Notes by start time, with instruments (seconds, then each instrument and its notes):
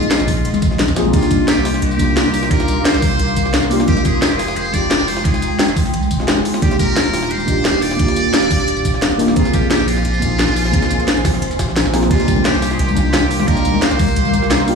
Already playing: ambient pad G#3 D#5 C6, synth stab G#3 A#3 C4 D#4 F4 G#4, muted trumpet F4
0.02 closed hi-hat, high conga
0.11 snare, closed hi-hat, ride
0.20 sub bass A#1, snare, closed hi-hat, tambourine
0.28 kick, open hi-hat, ride, tambourine
0.37 snare, ride
0.45 sub bass F1, closed hi-hat, ride
0.54 snare, closed hi-hat, tambourine, high conga
0.62 sub bass A#1, kick, closed hi-hat, ride, tambourine
0.71 snare
0.79 snare, closed hi-hat, ride, high conga
0.88 sub bass A#1, kick, snare, ride, tambourine
0.95 synth stab A#3 C4 D#4 F4 G#4, snare, closed hi-hat, ride, tambourine
1.05 high conga
1.11 synth stab A#3 D4 D#4, muted trumpet F4, ambient pad A#4 F5 C6 D6, kick, closed hi-hat, crash, ride
1.15 synth stab F4 G4
1.22 snare, closed hi-hat, tambourine
1.31 sub bass C2, kick, closed hi-hat, ride, tambourine
1.48 muted trumpet G4, snare, closed hi-hat, ride
1.57 sub bass C2, snare, tambourine
1.65 snare, open hi-hat, ride, tambourine
1.74 snare
1.82 sub bass C2, muted trumpet G4, closed hi-hat, ride
1.91 tambourine
1.97 sub bass C2, synth stab A#3 D4 D#4, kick, closed hi-hat, ride, tambourine
2.01 synth stab F4 G4
2.17 snare, closed hi-hat, ride
2.25 sub bass C2, ride
2.34 open hi-hat, ride, tambourine
2.43 snare
2.48 synth stab A#3 D4 D#4, muted trumpet A#4, kick, closed hi-hat, ride
2.52 synth stab F4 G4
2.60 snare, closed hi-hat, tambourine
2.68 sub bass C2, closed hi-hat, ride, tambourine
2.85 muted trumpet C5, snare, closed hi-hat, ride
2.94 sub bass C2, snare, closed hi-hat, tambourine
3.02 kick, open hi-hat, ride, tambourine
3.11 snare, ride
3.19 sub bass C2, closed hi-hat, ride
3.28 tambourine
3.36 sub bass C2, kick, closed hi-hat, ride, tambourine
3.46 snare
3.54 snare, closed hi-hat, ride
3.63 sub bass C2, snare, tambourine
3.69 synth stab A#3 D4 D#4 F4 G4, open hi-hat, ride, tambourine
3.80 snare
3.85 synth stab G#3 C4 D#4, ambient pad G#3 G5, muted trumpet G4, kick, closed hi-hat, ride
3.89 synth stab F4 G4
3.97 snare, closed hi-hat, tambourine
4.05 sub bass F1, muted trumpet G#4, kick, closed hi-hat, ride, tambourine
4.22 muted trumpet G#4, snare, closed hi-hat, ride
4.30 sub bass F1, muted trumpet G4, snare, tambourine
4.37 muted trumpet G#4, snare, open hi-hat, ride, tambourine
4.48 snare
4.56 sub bass F1, muted trumpet C5, closed hi-hat, ride
4.65 tambourine
4.71 sub bass F1, synth stab G#3 C4 D#4, muted trumpet D5, kick, closed hi-hat, ride, tambourine
4.75 synth stab F4 G4
4.91 snare, closed hi-hat, ride
5.00 sub bass F1, ride
5.08 muted trumpet C5, open hi-hat, ride, tambourine
5.17 snare
5.22 synth stab G#3 C4 D#4, muted trumpet G#4, kick, closed hi-hat, ride
5.27 synth stab F4 G5
5.34 snare, closed hi-hat, tambourine
5.42 sub bass F1, closed hi-hat, ride, tambourine
5.59 snare, closed hi-hat, ride
5.68 sub bass F1, snare, closed hi-hat, tambourine
5.77 kick, open hi-hat, ride, tambourine
5.85 snare, ride
5.94 sub bass C2, closed hi-hat, ride
6.03 tambourine
6.11 sub bass F1, kick, closed hi-hat, ride, tambourine
6.17 synth stab G#3 C4 D#4, snare
6.21 synth stab F4 G#4
6.28 snare, closed hi-hat, ride
6.37 sub bass F1, snare, tambourine
6.45 open hi-hat, ride, tambourine
6.54 snare
6.60 synth stab A#3 D4 D#4, ambient pad G4 F5 D6, muted trumpet G4, kick, closed hi-hat, ride
6.64 synth stab F4 G4
6.71 snare, closed hi-hat, tambourine
6.79 sub bass D#1, muted trumpet A#4, kick, closed hi-hat, ride, tambourine
6.96 snare, closed hi-hat, ride
7.05 sub bass D#1, snare, tambourine
7.13 snare, open hi-hat, ride, tambourine
7.23 snare
7.31 sub bass D#1, muted trumpet C5, closed hi-hat, ride
7.40 tambourine
7.45 sub bass D#1, synth stab A#3 D4 D#4, kick, closed hi-hat, ride, tambourine
7.49 synth stab F4 G4
7.65 snare, closed hi-hat, ride
7.74 sub bass D#1, ride
7.82 muted trumpet D5, open hi-hat, ride, tambourine
7.91 snare
7.96 synth stab A#3 D4 D#4, kick, closed hi-hat, ride
8.01 synth stab F4 G4
8.08 snare, closed hi-hat, tambourine
8.16 sub bass D#1, closed hi-hat, ride, tambourine
8.34 snare, closed hi-hat, ride
8.42 sub bass D#1, snare, closed hi-hat, tambourine
8.51 kick, open hi-hat, ride, tambourine
8.60 snare, ride
8.68 sub bass D#1, closed hi-hat, ride
8.77 tambourine
8.85 sub bass D#1, kick, closed hi-hat, ride, tambourine
8.94 snare
9.02 snare, closed hi-hat, ride
9.11 sub bass D#1, snare, tambourine
9.18 synth stab A#3 D4 D#4 F4 G4, open hi-hat, ride, tambourine
9.28 snare
9.34 synth stab A#3 C4 D#4, muted trumpet F4, ambient pad C5 G#5 C6, kick, closed hi-hat, ride
9.38 synth stab F4 G#4
9.45 snare, closed hi-hat, tambourine
9.53 sub bass A#1, muted trumpet G4, kick, closed hi-hat, ride, tambourine
9.71 muted trumpet G4, snare, closed hi-hat, ride
9.79 sub bass A#1, snare, tambourine
9.87 muted trumpet F4, open hi-hat, ride, tambourine
9.97 snare
10.05 sub bass A#1, closed hi-hat, ride
10.14 tambourine
10.19 sub bass A#1, synth stab A#3 C4 D#4, kick, closed hi-hat, ride, tambourine
10.23 synth stab F4 G#4
10.39 snare, closed hi-hat, ride
10.48 sub bass A#1, ride
10.56 open hi-hat, ride, tambourine
10.65 snare
10.71 synth stab A#3 C4 D#4, kick, closed hi-hat, ride
10.75 synth stab F4 G#4
10.82 snare, closed hi-hat, tambourine
10.90 sub bass A#1, closed hi-hat, ride, tambourine
11.00 snare, closed hi-hat
11.08 snare, closed hi-hat, ride
11.17 sub bass A#1, tambourine
11.25 kick, snare, open hi-hat, ride, tambourine
11.34 snare
11.42 sub bass F1, closed hi-hat, ride
11.51 snare, closed hi-hat, tambourine
11.59 sub bass A#1, kick, snare, closed hi-hat, ride, tambourine
11.68 snare
11.76 snare, closed hi-hat, ride
11.85 sub bass A#1, snare, tambourine
11.92 synth stab A#3 C4 D#4 F4 G#4, snare, open hi-hat, ride, tambourine
12.03 snare
12.08 synth stab A#3 D4 D#4, muted trumpet F4, ambient pad A#4 F5 D6, kick, closed hi-hat, ride, crash
12.12 synth stab F4 G4
12.20 snare, closed hi-hat, tambourine
12.28 sub bass C2, kick, closed hi-hat, ride, tambourine
12.36 high conga
12.45 muted trumpet G4, snare, closed hi-hat, ride
12.54 sub bass C2, snare, tambourine
12.62 snare, open hi-hat, ride, tambourine
12.71 muted trumpet G#4, snare
12.79 sub bass C2, muted trumpet G4, closed hi-hat, ride
12.88 tambourine, high conga
12.94 sub bass C2, synth stab A#3 D4 D#4, kick, closed hi-hat, ride, tambourine
12.98 synth stab F4 G4
13.13 snare, closed hi-hat, ride, high conga
13.22 sub bass C2, ride
13.31 open hi-hat, ride, tambourine
13.40 snare, high conga
13.45 synth stab A#3 D4 D#4, muted trumpet A#4, kick, closed hi-hat, ride
13.49 synth stab F4 G4
13.57 snare, closed hi-hat, tambourine
13.65 sub bass C2, closed hi-hat, ride, tambourine
13.74 high conga
13.82 muted trumpet C5, snare, closed hi-hat, ride
13.91 sub bass C2, snare, closed hi-hat, tambourine
13.99 kick, open hi-hat, ride, tambourine, high conga
14.08 snare, ride
14.16 sub bass C2, closed hi-hat, ride
14.25 tambourine, high conga
14.33 sub bass C2, kick, closed hi-hat, ride, tambourine
14.42 snare
14.50 snare, closed hi-hat, ride, high conga
14.60 sub bass C2, snare, tambourine
14.66 synth stab A#3 D4 D#4 F4 G4, open hi-hat, ride, tambourine